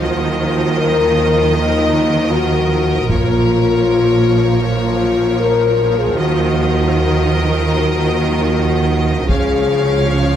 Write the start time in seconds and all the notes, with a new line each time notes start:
Already playing: F3
0.01 D#2 D#3 F#4 A#4 D#5
0.78 A#4
1.54 D#4
2.31 F#4
3.09 A#1 A#2 F3 F4 C#5, taiko
4.63 F4
5.40 A#4
6.00 G#4
6.17 D#2 D#3 F#4 A#4 D#5
7.73 F#4
9.28 C#2 C#3 F3 G#4 C#5 F5, taiko
10.07 C#4